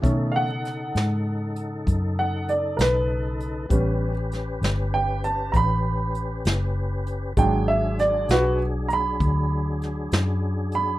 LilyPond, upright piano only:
<<
  \new Staff \with { instrumentName = "Upright piano" } { \time 12/8 \key b \dorian \tempo 4. = 65 r8 <f'' fis''>2. fis''8 d''8 <ais' b'>4.~ | <ais' b'>4. r8 g''8 a''8 <ais'' b''>2. | g''8 e''8 d''8 <fis' b'>8 r8 <ais'' b''>2. b''8 | }
  \new Staff \with { instrumentName = "Upright piano" } { \time 12/8 \key b \dorian <dis a cis'>8 r1 r4. | <g b cis'>8 r1 r4. | <fis gis d'>4. r1 r8 | }
>>